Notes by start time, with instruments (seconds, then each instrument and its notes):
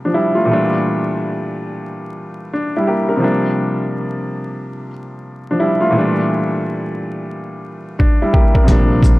Already playing: grand piano C3
0.05 grand piano F3 D4
0.14 grand piano G3 E4
0.35 grand piano A3 F4
0.45 grand piano A#2 E3
0.49 grand piano G3 A3 D4
2.54 grand piano D4
2.77 grand piano G3 E4
2.87 grand piano A#3 G4
3.09 grand piano D4 A#4
3.16 grand piano C3 F3 G3
3.22 grand piano A#3 D4
5.51 grand piano F3 D4
5.60 grand piano G3 E4
5.81 grand piano A3 F4
5.91 grand piano A#2 E3 G3
5.96 grand piano A3 D4
7.99 grand piano D4, kick
8.22 grand piano G3 E4
8.33 grand piano A#3 G4, kick
8.54 grand piano D4 A#4, kick
8.64 grand piano C3 F3 G3
8.68 upright bass A#1, grand piano A#3 D4, kick, closed hi-hat
9.03 kick, shaker